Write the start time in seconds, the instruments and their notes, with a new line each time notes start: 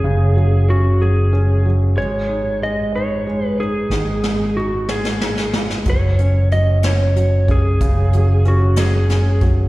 Already playing: felt piano F#3 C#4, electric slide guitar G#4
0.04 fretless electric bass F#1, felt piano C#3
0.36 felt piano F#3
0.69 felt piano C#4, electric slide guitar F#4
1.00 felt piano F#3, electric slide guitar G#4
1.33 felt piano C#4
1.65 felt piano F#3
1.97 fretless electric bass G#1, felt piano G#3, electric slide guitar C#5
2.29 felt piano D#4
2.62 felt piano G#3, electric slide guitar D#5
2.95 felt piano D#4, electric slide guitar C#5
3.27 felt piano G#3
3.46 electric slide guitar B4
3.60 felt piano D#4, electric slide guitar G#4
3.90 fretless electric bass G#1, felt piano D#3, snare
4.23 felt piano G#3, snare
4.57 felt piano D#4, electric slide guitar F#4
4.88 felt piano G#3, electric slide guitar G#4, snare
5.05 snare
5.20 felt piano D#4, snare
5.38 snare
5.53 felt piano G#3, snare
5.70 snare
5.85 fretless electric bass F#1, felt piano F#3, kick, closed hi-hat
5.90 electric slide guitar C#5
6.18 felt piano C#4, closed hi-hat
6.51 felt piano F#3, electric slide guitar D#5, closed hi-hat
6.83 felt piano C#4, electric slide guitar C#5, snare, closed hi-hat
7.16 felt piano F#3, closed hi-hat
7.48 felt piano C#4, electric slide guitar G#4, kick, closed hi-hat
7.81 fretless electric bass F#1, felt piano C#3, kick, closed hi-hat
8.13 felt piano F#3, closed hi-hat
8.45 felt piano C#4, electric slide guitar F#4, closed hi-hat
8.76 felt piano F#3, electric slide guitar G#4, snare, closed hi-hat
9.09 felt piano C#4, snare, closed hi-hat
9.41 felt piano F#3, kick, closed hi-hat